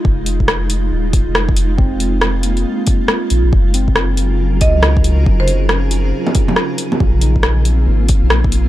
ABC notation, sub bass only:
X:1
M:4/4
L:1/16
Q:"Swing 16ths" 1/4=138
K:Fphr
V:1 name="Sub bass" clef=bass
F,,,8 E,,,3 F,,,4- F,,, | F,,,8 z6 B,,, B,,, | G,,,8- G,,,2 D,,6 | G,,,8 z8 |
B,,,8 A,,,3 B,,,4- B,,, |]